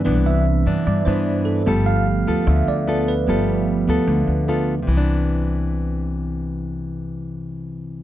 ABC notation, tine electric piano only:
X:1
M:4/4
L:1/8
Q:1/4=150
K:C
V:1 name="Tine electric piano"
z e3 d c2 A- | A f3 e d2 B- | B z6 z | z8 |
z8 |]
V:2 name="Tine electric piano"
[E,DB]8 | [F,A,B,]8 | [F,A,B,]8 | z8 |
z8 |]